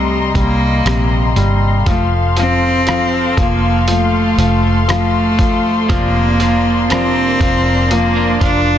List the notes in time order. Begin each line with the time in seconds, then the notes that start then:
Already playing: C2 C3 G3 D#5 A#5 C6
0.35 C2 G3 A#3, kick, closed hi-hat
0.85 A#1 C3, cross-stick, closed hi-hat
1.36 G1 G3, closed hi-hat
1.86 F1 F3 A3 A4 F5 C6, kick, closed hi-hat
2.37 F3 C4, closed hi-hat
2.87 F3, cross-stick, closed hi-hat
3.37 F1 F3 A#3, kick, closed hi-hat
3.88 F3 A3, closed hi-hat
4.38 F1 F3, closed hi-hat
4.88 F3 A3, cross-stick, closed hi-hat
5.38 F3, kick, closed hi-hat
5.89 F1 F2 C3 F3 A#3 D4 F4 A#4 D5, kick, closed hi-hat
6.39 F3 A#3 D4 F4, closed hi-hat
6.90 F2 C3 F3 A#3 C4 D4 F4, cross-stick, closed hi-hat
7.40 F1 F3 A#3 D4 F4, kick, closed hi-hat
7.65 F3 A#3 D4 F4
7.91 F3 A#3, closed hi-hat
8.15 F3 A#3 D4 F4
8.40 F1 F3 A#3 D4 F4, kick, closed hi-hat